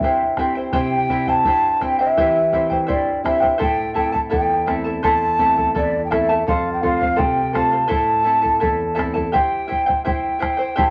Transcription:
Already playing: G3 C4 E4 E5
0.00 G2 E4 C5 E5 G5, bombo low
0.37 G3 C4 E4 C5 E5 G5, bombo rim, bombo low
0.55 E4 C5 G5
0.73 C3 E4 G4 C5 E5 G5, bombo low
1.09 G3 C4 E4 C5 E5 G5, bombo low
1.27 E4 C5 G5 A5, bombo low
1.45 G2 E4 C5 E5 G5, bombo low
1.77 G3 E5 A5
1.81 C4 E4 C5 G5, bombo rim, bombo low
1.99 E4 C5 E5 G5
2.17 E3 E4 G4 C5 E5 G5, bombo low
2.52 G3 C4 E4 C5 E5 G5, bombo low
2.70 E4 C5 G5, bombo low
2.87 G2 E4 C5 D5 E5 G5, bombo low
3.24 G3 C4 E4 C5 E5 G5, bombo rim, bombo low
3.40 E4 C5 G5, bombo low
3.58 A2 E4 A4 C5 E5 A5, bombo low
3.62 G5
3.94 A3 C4 E4 A4 E5 G5 A5, bombo low
4.12 E4 A4 A5, bombo low
4.30 E2 E4 A4 E5 G5 A5, bombo low
4.66 A3 C4 E4 A4 E5 A5, bombo rim, bombo low
4.84 E4 A4 A5
5.03 E2 E4 A4 C5 E5 A5, bombo low
5.39 A3 C4 E4 A4 E5 A5, bombo low
5.56 E4 A4 A5, bombo low
5.75 E2 E4 A4 D5 E5 A5, bombo low
6.05 G5
6.11 A3 C4 E4 A4 E5 A5, bombo rim, bombo low
6.29 E4 A4 A5
6.47 F2 A4 C5 F5, bombo low
6.73 G5
6.81 A3 C4 F4 A4 C5 F5, bombo low
7.00 C5 F5, bombo low
7.16 C3 A4 C5 F5 G5, bombo low
7.53 A3 C4 F4 A4 C5 F5 A5, bombo rim, bombo low
7.71 C5 F5
7.87 A2 E4 A4 C5 E5 A5, bombo low
8.24 A3 C4 E4 A4 E5 A5
8.42 E4 A4 A5, bombo low
8.60 E2 E4 A4 E5 A5, bombo low
8.95 A3 C4 E4 A4 E5 A5
8.99 bombo rim, bombo low
9.14 E4 A4 A5, bombo low
9.32 E4 G4 C5 E5 G5, bombo low
9.68 E4 C5 E5 G5, bombo low
9.86 E4 C5 G5, bombo low
10.05 E4 C5 E5 G5, bombo low
10.39 E4 C5 E5 G5, bombo rim, bombo low
10.57 E4 C5 G5
10.76 E4 G4 C5 E5 G5 A5, bombo low

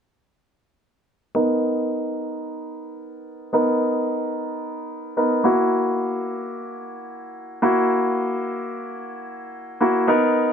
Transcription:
1.35 B3 D#4 A#4
3.53 B3 D#4 A#4
5.17 B3 D#4 A#4
5.44 A#3 E4 F#4
7.62 A#3 E4 F#4
9.81 A#3 E4 F#4
10.08 B3 D#4 A#4

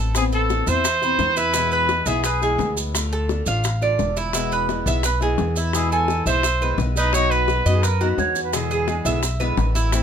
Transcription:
Already playing: A1 E3 A3 C4 E4 A4
0.15 E3 B3 C4 E4 G#4, high bongo, maracas
0.32 A4, maracas
0.49 E3 B3 C4 E4, high bongo, maracas
0.67 E2 B3 C4 E4 C5 E5, high bongo, maracas
0.84 muted steel-string acoustic guitar stroke, high bongo, maracas
1.02 B3 C4 E4 B5, high bongo, maracas
1.19 E2 E3 B3 C4 E4, high bongo, low bongo, maracas
1.36 E4 B4, high bongo, maracas
1.54 B2 E3 G#3 B3 E4, high bongo, maracas
1.71 B4, maracas
1.89 E3 G#3 B3 E4, high bongo, maracas
2.06 B1 E3 G#3 B3 E4 G#4 E5, high bongo, maracas
2.24 G#4 B4, high bongo, maracas
2.42 E3 G#3 B3 E4 G#4, high bongo, maracas
2.58 D2 E3 G#3 B3 E4, high bongo, low bongo, maracas
2.77 high bongo, maracas
2.94 D3 A3 D4 F4, high bongo, maracas
3.13 A4, maracas
3.29 D3 A3 D4 F4, high bongo, maracas
3.46 A1 A3 D4 F4 F5, high bongo, maracas
3.64 muted steel-string acoustic guitar stroke, high bongo, maracas
3.81 A3 D4 F4 D5, high bongo, maracas
3.99 E1 D3 A3 D4 F4, high bongo, low bongo, maracas
4.17 E4, high bongo, maracas
4.33 B2 E3 G#3 B3 E4, high bongo, maracas
4.52 B4, maracas
4.69 E3 G#3 B3 E4, high bongo, maracas
4.86 B1 E3 G#3 B3 E4 E5, high bongo, maracas
5.03 B4, muted steel-string acoustic guitar stroke, high bongo, maracas
5.21 E3 G#3 B3 E4 G#4, high bongo, maracas
5.38 E2 E3 G#3 B3 E4, high bongo, low bongo, maracas
5.56 E4, high bongo, maracas
5.73 B2 E3 G#3 B3 E4 G#4, high bongo, maracas
5.92 A4 G#5, maracas
6.08 E3 G#3 B3 E4, high bongo, maracas
6.26 B1 E3 G#3 B3 E4 C5 E5, high bongo, maracas
6.43 muted steel-string acoustic guitar stroke, high bongo, maracas
6.61 E3 G#3 B3 E4 B4, high bongo, maracas
6.78 B1 E3 G#3 B3 E4, high bongo, low bongo, maracas
6.96 D#4 B4, high bongo, maracas
7.13 B2 F#3 B3 D#4 F#4 C#5, high bongo, maracas
7.31 B4, maracas
7.48 F#3 B3 D#4 F#4, high bongo, maracas
7.66 F#2 F#3 B3 D#4 F#4 D#5, high bongo, maracas
7.75 G#4
7.82 A#4 B4, muted steel-string acoustic guitar stroke, high bongo, maracas
8.01 F#3 B3 D#4 F#4, high bongo, maracas
8.09 B4
8.18 E2 F#3 B3 D#4 F#4 C#5, high bongo, low bongo, maracas
8.36 high bongo, maracas
8.44 B4
8.53 B2 D3 G#3 B3 E4 G#4, high bongo, maracas
8.71 G#4, maracas
8.88 D3 G#3 B3 E4, high bongo, maracas
9.05 B1 D3 G#3 B3 E4 E5, high bongo, maracas
9.22 muted steel-string acoustic guitar stroke, high bongo, maracas
9.40 D3 G#3 B3 E4 B4, high bongo, maracas
9.57 A1 D3 G#3 B3 E4, high bongo, low bongo, maracas
9.75 E4, high bongo, maracas
9.92 E3 A3 C4 E4, high bongo, maracas

